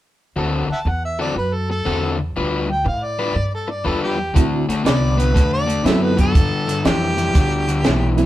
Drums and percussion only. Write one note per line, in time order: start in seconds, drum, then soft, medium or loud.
4.36 kick loud
4.36 closed hi-hat medium
4.70 snare soft
4.70 closed hi-hat medium
4.86 snare loud
4.86 closed hi-hat medium
5.20 closed hi-hat medium
5.36 kick loud
5.36 snare soft
5.36 closed hi-hat medium
5.70 closed hi-hat medium
5.86 snare loud
5.86 closed hi-hat medium
6.18 kick medium
6.18 closed hi-hat medium
6.35 kick loud
6.35 closed hi-hat medium
6.69 snare soft
6.69 closed hi-hat medium
6.85 snare loud
6.85 closed hi-hat medium
7.18 closed hi-hat medium
7.35 kick loud
7.35 snare soft
7.35 closed hi-hat medium
7.69 closed hi-hat medium
7.84 snare medium
7.84 closed hi-hat medium
8.18 closed hi-hat soft